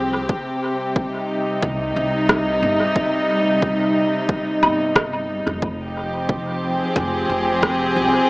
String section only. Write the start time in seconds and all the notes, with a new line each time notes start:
Already playing: F3 C4 G4 G#4
0.29 C3
0.67 G3
1.09 D#4
5.63 F3
5.84 G4
6.06 C4
6.72 G#4